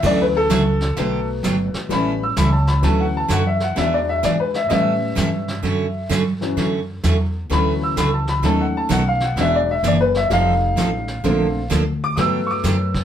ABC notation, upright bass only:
X:1
M:4/4
L:1/8
Q:"Swing" 1/4=128
K:D
V:1 name="Upright bass" clef=bass
D,,2 C,,2 B,,,2 G,,, z | A,,,2 C,,2 D,,2 F,,2 | E,,2 ^G,,2 A,,2 =G,,2 | F,,2 G,,2 F,,2 E,,2 |
D,,2 C,,2 ^D,,2 B,,,2 | E,,,2 F,,,2 =F,,,2 A,,,2 | _B,,,2 D,,2 G,,2 F,,2 |]